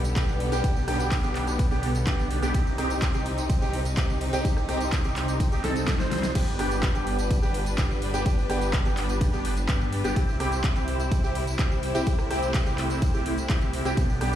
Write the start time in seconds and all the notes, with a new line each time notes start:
Already playing: B1 D3 G3 B3
0.04 closed hi-hat, tambourine
0.16 B3 D4 G4, kick, clap, closed hi-hat, ride, tambourine
0.29 tambourine
0.40 open hi-hat
0.52 B1 B3 D4 G4, closed hi-hat, tambourine
0.64 B3 D4 G4, kick, closed hi-hat, ride, tambourine
0.76 tambourine
0.88 B1 B3 D4 G4, cross-stick, open hi-hat
1.00 closed hi-hat, tambourine
1.12 kick, clap, closed hi-hat, ride, tambourine
1.23 B1 B3 D4 G4, closed hi-hat, tambourine
1.35 clap, open hi-hat
1.47 closed hi-hat, tambourine
1.59 kick, closed hi-hat, ride, tambourine
1.71 B1 B3 D4 G4, tambourine
1.83 open hi-hat
1.95 closed hi-hat, tambourine
2.07 B3 D4 G4, kick, clap, closed hi-hat, ride, tambourine
2.19 tambourine
2.31 open hi-hat
2.42 B1 B3 D4 G4, closed hi-hat, tambourine
2.54 C2 C3 C4 D#4 G4, kick, closed hi-hat, ride, tambourine
2.67 tambourine
2.78 C2 C4 D#4 G4, cross-stick, open hi-hat
2.90 closed hi-hat, tambourine
3.02 kick, clap, closed hi-hat, ride, tambourine
3.14 C2 C4 D#4 G4, closed hi-hat, tambourine
3.26 open hi-hat
3.38 closed hi-hat, tambourine
3.50 kick, closed hi-hat, ride, tambourine
3.62 C2 C4 D#4 G4, tambourine
3.73 open hi-hat
3.85 closed hi-hat, tambourine
3.97 C4 D#4 G4, kick, clap, closed hi-hat, ride, tambourine
4.10 tambourine
4.21 open hi-hat
4.33 C2 C4 D#4 G4, closed hi-hat, tambourine
4.45 C2 C4 D#4 G4, kick, closed hi-hat, ride, tambourine
4.57 cross-stick, tambourine
4.69 C2 C4 D#4 G4, cross-stick, open hi-hat
4.81 closed hi-hat, tambourine
4.92 kick, clap, closed hi-hat, ride, tambourine
5.04 C2 C4 D#4 G4, closed hi-hat, tambourine
5.16 clap, open hi-hat
5.28 closed hi-hat, tambourine
5.40 kick, closed hi-hat, ride, tambourine, swell
5.52 C2 C4 D#4 G4, closed hi-hat, tambourine
5.64 C2 C4 D#4 A4, snare, open hi-hat
5.76 closed hi-hat, tambourine
5.88 kick, snare, clap, closed hi-hat, ride, tambourine
6.00 C2 C4 D#4 C5, snare, tambourine
6.11 snare, open hi-hat
6.23 snare, closed hi-hat, tambourine
6.35 G1 G3 B3 D4 G4 B4, kick, closed hi-hat, crash, ride, tambourine
6.48 tambourine
6.59 G1 B3 D4 G4, cross-stick, open hi-hat
6.71 closed hi-hat, tambourine
6.83 kick, clap, closed hi-hat, ride, tambourine
6.95 G1 B3 D4 G4, closed hi-hat, tambourine
7.07 open hi-hat
7.19 closed hi-hat, tambourine
7.31 kick, closed hi-hat, ride, tambourine
7.42 G1 B3 D4 G4, tambourine
7.54 open hi-hat
7.66 closed hi-hat, tambourine
7.78 B3 D4 G4, kick, clap, closed hi-hat, ride, tambourine
7.91 tambourine
8.02 open hi-hat
8.14 G1 B3 D4 G4, closed hi-hat, tambourine
8.26 G1 B3 D4 G4, kick, closed hi-hat, ride, tambourine
8.38 tambourine
8.50 G1 B3 D4 G4, cross-stick, open hi-hat
8.62 closed hi-hat, tambourine
8.73 kick, clap, closed hi-hat, ride, tambourine
8.85 G1 B3 D4 G4, closed hi-hat, tambourine
8.97 clap, open hi-hat
9.09 closed hi-hat, tambourine
9.21 kick, closed hi-hat, ride, tambourine
9.33 G1 B3 D4 G4, tambourine
9.45 open hi-hat
9.57 closed hi-hat, tambourine
9.69 G2 B3 D4 G4, kick, clap, closed hi-hat, ride, tambourine
9.81 tambourine
9.92 open hi-hat
10.04 G1 B3 D4 G4, closed hi-hat, tambourine
10.16 C2 C3 C4 E4 G4, kick, closed hi-hat, ride, tambourine
10.29 tambourine
10.40 C2 C4 E4 G4, cross-stick, open hi-hat
10.52 closed hi-hat, tambourine
10.64 kick, clap, closed hi-hat, ride, tambourine
10.76 C2 C4 E4 G4, closed hi-hat, tambourine
10.88 open hi-hat
11.00 closed hi-hat, tambourine
11.12 kick, closed hi-hat, ride, tambourine
11.23 C2 C4 E4 G4, tambourine
11.35 open hi-hat
11.47 closed hi-hat, tambourine
11.59 C4 E4 G4, kick, clap, closed hi-hat, ride, tambourine
11.72 tambourine
11.83 open hi-hat
11.95 C2 C4 E4 G4, closed hi-hat, tambourine
12.07 C2 A3 C4 E4 G4, kick, closed hi-hat, ride, tambourine
12.19 cross-stick, tambourine
12.30 C2 C4 E4 G4, cross-stick, open hi-hat
12.42 closed hi-hat, tambourine
12.54 kick, clap, closed hi-hat, ride, tambourine
12.66 C2 C4 E4 G4, closed hi-hat, tambourine
12.78 clap, open hi-hat
12.90 closed hi-hat, tambourine
13.02 kick, closed hi-hat, ride, tambourine
13.14 C2 C4 E4 G4, tambourine
13.26 open hi-hat
13.38 closed hi-hat, tambourine
13.50 C2 C4 E4 G4, kick, clap, closed hi-hat, ride, tambourine
13.62 closed hi-hat, tambourine
13.73 open hi-hat
13.85 C2 C4 E4 G4, closed hi-hat, tambourine
13.97 B1 D3 G3 B3 D4 G4, kick, closed hi-hat, ride, tambourine
14.10 tambourine
14.21 B1 B3 D4 G4, cross-stick, open hi-hat